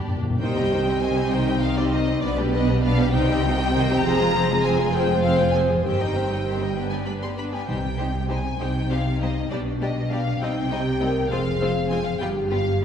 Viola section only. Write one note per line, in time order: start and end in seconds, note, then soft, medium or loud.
0.00 0.17 D4 medium
0.40 0.55 D#3 soft
0.40 0.55 D#4 soft
0.56 0.71 G3 soft
0.56 0.71 C4 soft
0.72 0.87 D#3 soft
0.72 0.87 D#4 soft
0.87 1.02 G3 soft
0.87 1.02 C4 soft
1.02 1.16 D#3 soft
1.02 1.16 D#4 soft
1.17 1.32 G3 soft
1.17 1.32 C4 soft
1.34 1.48 D#3 soft
1.34 1.48 D#4 soft
1.48 1.63 G3 soft
1.48 1.63 C4 soft
1.63 1.77 D#3 soft
1.63 1.77 D#4 soft
1.78 1.93 G3 soft
1.78 1.93 C4 soft
1.94 2.08 D#3 soft
1.94 2.08 D#4 soft
2.09 2.23 G3 soft
2.09 2.23 C4 soft
2.23 2.37 B3 medium
2.23 2.37 D4 medium
2.38 2.53 G3 soft
2.38 2.53 B3 soft
2.53 2.68 B3 medium
2.53 2.68 D4 medium
2.69 2.84 G3 medium
2.69 2.83 B3 medium
2.84 2.98 B3 medium
2.84 2.97 D4 medium
2.99 3.14 G3 medium
2.99 3.14 B3 medium
3.14 3.28 D#3 medium
3.14 3.28 D#4 medium
3.30 3.44 G3 medium
3.30 3.44 C4 medium
3.45 3.59 D#3 medium
3.45 3.59 D#4 medium
3.60 3.74 G3 medium
3.60 3.74 C4 medium
3.74 3.88 D#3 medium
3.74 3.88 D#4 medium
3.89 4.04 G3 medium
3.89 4.02 C4 medium
4.04 4.17 F3 medium
4.04 4.17 C4 medium
4.19 4.33 G#3 medium
4.34 4.48 F3 medium
4.34 4.49 C4 medium
4.49 4.64 G#3 medium
4.64 4.77 F3 medium
4.64 4.78 C4 medium
4.78 4.93 G#3 medium
4.93 5.08 F3 medium
4.93 5.08 C4 medium
5.09 5.23 G#3 medium
5.23 5.37 F3 soft
5.23 5.37 C4 soft
5.39 5.54 G#3 soft
5.55 5.69 F3 soft
5.55 5.69 C4 soft
5.69 5.84 G#3 soft
5.85 5.98 D#3 soft
5.85 5.99 C4 soft
5.99 6.15 G3 soft
5.99 6.14 D#4 soft
6.16 6.30 D#3 soft
6.16 6.30 C4 soft
6.30 6.45 G3 soft
6.30 6.45 D#4 soft
6.46 6.60 D#3 soft
6.46 6.60 C4 soft
6.61 6.76 G3 soft
6.61 6.76 D#4 soft
6.77 6.90 B3 soft
6.77 6.90 D4 soft
6.92 7.07 G3 soft
6.92 7.05 B3 soft
7.07 7.21 B3 soft
7.07 7.22 D4 soft
7.22 7.37 G3 soft
7.22 7.37 B3 soft
7.38 7.52 B3 soft
7.38 7.52 D4 soft
7.53 7.67 G3 soft
7.53 7.68 B3 soft
7.68 7.76 G3 soft
7.68 7.76 D#4 soft
7.99 8.07 G3 soft
7.99 8.07 D#4 soft
8.29 8.37 G3 soft
8.29 8.37 D#4 soft
8.59 8.68 G3 soft
8.59 8.67 D#4 soft
8.90 8.98 G3 soft
8.90 8.98 D#4 soft
9.21 9.29 G3 soft
9.21 9.29 D#4 soft
9.51 9.59 G3 soft
9.51 9.59 D4 soft
9.81 9.89 G3 soft
9.81 9.89 D4 soft
10.11 10.19 G3 soft
10.11 10.19 D4 soft
10.41 10.49 G3 soft
10.41 10.49 C4 soft
10.71 10.79 G3 soft
10.71 10.79 C4 soft
11.01 11.09 G3 soft
11.01 11.09 C4 soft
11.31 11.39 G#3 medium
11.31 11.39 C4 medium
11.61 11.69 G#3 medium
11.61 11.69 C4 medium
11.90 11.99 G#3 soft
11.90 11.98 C4 soft
12.20 12.28 G3 soft
12.20 12.29 B3 soft
12.51 12.59 G3 soft
12.51 12.59 B3 soft